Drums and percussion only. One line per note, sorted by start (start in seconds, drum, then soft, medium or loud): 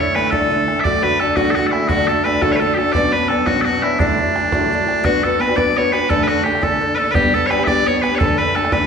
0.16 bodhran medium
0.24 bodhran soft
0.33 bodhran medium
0.52 bodhran soft
0.68 bodhran soft
0.85 bodhran medium
1.04 bodhran soft
1.20 bodhran soft
1.29 bodhran soft
1.37 bodhran medium
1.56 bodhran soft
1.73 bodhran medium
1.89 bodhran medium
2.08 bodhran soft
2.26 bodhran medium
2.34 bodhran soft
2.42 bodhran medium
2.62 bodhran soft
2.79 bodhran soft
2.95 bodhran medium
3.14 bodhran soft
3.30 bodhran medium
3.39 bodhran soft
3.47 bodhran medium
3.66 bodhran soft
3.83 bodhran soft
4.00 bodhran medium
4.19 bodhran soft
4.36 bodhran medium
4.45 bodhran soft
4.52 bodhran medium
4.72 bodhran soft
4.88 bodhran soft
5.05 bodhran medium
5.15 bodhran soft
5.25 bodhran soft
5.41 bodhran medium
5.49 bodhran soft
5.58 bodhran medium
5.77 bodhran soft
5.93 bodhran soft
6.10 bodhran medium
6.20 bodhran soft
6.30 bodhran soft
6.46 bodhran medium
6.55 bodhran soft
6.63 bodhran medium
7.15 bodhran medium
7.25 bodhran soft
7.35 bodhran soft
7.51 bodhran medium
7.59 bodhran soft
7.67 bodhran medium
7.88 bodhran soft
8.04 bodhran medium
8.21 bodhran medium
8.31 bodhran soft
8.40 bodhran soft
8.56 bodhran medium
8.65 bodhran soft
8.72 bodhran medium